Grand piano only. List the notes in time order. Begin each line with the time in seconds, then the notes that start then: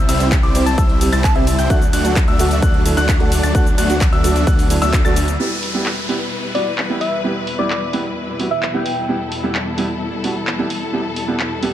0.09 E6
0.43 D6
0.78 E6
1.12 A6
1.59 G6
1.70 F#6
1.93 F#6
2.28 E6
2.62 F#6
2.97 F#6
3.43 A6
3.55 F#6
3.78 F#6
4.12 E6
4.47 F#6
4.82 E6
5.05 A6